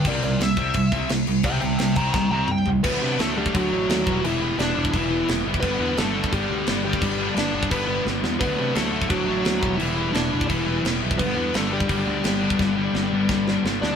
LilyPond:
<<
  \new Staff \with { instrumentName = "Lead electric guitar" } { \time 4/4 \key g \major \tempo 4 = 172 <bes' d''>8 <bes' d''>8 e''2 r4 | <e'' g''>8 <e'' g''>8 <e'' g''>8 <g'' bes''>8 <g'' bes''>8 <g'' bes''>8 g''8 r8 | <b b'>4 <a a'>8 <g g'>8 <fis fis'>2 | <e e'>4 <d' d''>4 <e e'>4 r4 |
<b b'>4 <a a'>4 <g g'>4. <g g'>8~ | <g g'>4 <d' d''>4 <b b'>4 r4 | <b b'>4 <a a'>4 <fis fis'>2 | <e e'>4 <d' d''>4 <e e'>4 r4 |
<b b'>4 <a a'>8 <g g'>2~ <g g'>8~ | <g g'>2. r8 <d' d''>8 | }
  \new Staff \with { instrumentName = "Distorted electric guitar" } { \clef bass \time 4/4 \key g \major <c g c'>8 <c g>8 <c g>8 <c g c'>8 <c g>8 <c g c'>8 <c g>8 <c g>8 | <c g c'>8 <c g>8 <c g>8 <c g c'>8 <c g>8 <c g c'>8 <c g>8 <c g>8 | <d fis a d'>8 <d fis a d'>8 <d fis a d'>8 <d fis a d'>8 <d fis a d'>8 <d fis a d'>8 <d fis a d'>8 <e g b e'>8 | <e g b e'>8 <e g b e'>8 <e g b e'>8 <e g b e'>8 <e g b e'>8 <e g b e'>8 <e g b e'>8 <e g b e'>8 |
<g, d g b d'>8 <g, d g b d'>8 <g, d g b d'>8 <g, d g b d'>8 <g, d g b d'>8 <g, d g b d'>8 <g, d g b d'>8 <g, d g b d'>8 | <g, d g b d'>8 <g, d g b d'>8 <g, d g b d'>8 <g, d g b d'>8 <g, d g b d'>8 <g, d g b d'>8 <g, d g b d'>8 <g, d g b d'>8 | <d fis a d'>8 <d fis a d'>8 <d fis a d'>8 <d fis a d'>8 <d fis a d'>8 <d fis a d'>8 <d fis a d'>8 <e g b e'>8 | <e g b e'>8 <e g b e'>8 <e g b e'>8 <e g b e'>8 <e g b e'>8 <e g b e'>8 <e g b e'>8 <e g b e'>8 |
<g, d g b d'>8 <g, d g b d'>8 <g, d g b d'>8 <g, d g b d'>8 <g, d g b d'>8 <g, d g b d'>8 <g, d g b d'>8 <g, d g b d'>8 | <g, d g b d'>8 <g, d g b d'>8 <g, d g b d'>8 <g, d g b d'>8 <g, d g b d'>8 <g, d g b d'>8 <g, d g b d'>8 <g, d g b d'>8 | }
  \new Staff \with { instrumentName = "Picked electric bass" } { \clef bass \time 4/4 \key g \major c,8 c,8 c,8 c,8 c,8 c,8 c,8 c,8 | c,8 c,8 c,8 c,8 c,8 c,8 c,8 c,8 | d,8 c8 d,4 d,8 a,,8 ees,8 e,,8 | e,,4 e,,8 e,,8 e,,4 e,,8 fis,,8 |
g,,8 e,8 g,,4 g,,8 d,8 g,,4 | g,,4 g,,8 g,,8 g,,4 g,,8 e,8 | d,8 c8 d,4 d,8 a,,8 d,8 e,,8 | e,,4 e,,8 e,,8 e,,4 e,,8 b,,8 |
g,,8 e,8 g,,4 g,,8 d,8 g,,4 | g,,4 g,,8 g,,8 g,,4 g,,8 d,8 | }
  \new DrumStaff \with { instrumentName = "Drums" } \drummode { \time 4/4 <cymc bd>8 cymc8 <cymc sn>8 <cymc bd>8 <cymc bd>8 <cymc bd>8 <cymc sn>8 cymc8 | <cymc bd>8 cymc8 <cymc sn>8 <cymc bd>8 <bd sn>4 toml8 tomfh8 | <cymc bd>4 <cymc sn>8. bd16 <cymc bd>4 <cymc sn>8 bd8 | cymc4 <cymc sn>8. bd16 <cymc bd>4 <cymc sn>8. bd16 |
<cymc bd>4 <cymc sn>8. bd16 <cymc bd>4 <cymc sn>8. bd16 | <cymc bd>4 <cymc sn>8. bd16 <cymc bd>4 sn8 sn8 | <cymc bd>4 <cymc sn>8. bd16 <cymc bd>4 <cymc sn>8 bd8 | cymc4 <cymc sn>8. bd16 <cymc bd>4 <cymc sn>8. bd16 |
<cymc bd>4 <cymc sn>8. bd16 <cymc bd>4 <cymc sn>8. bd16 | <bd sn>4 sn4 <bd sn>8 sn8 sn8 sn8 | }
>>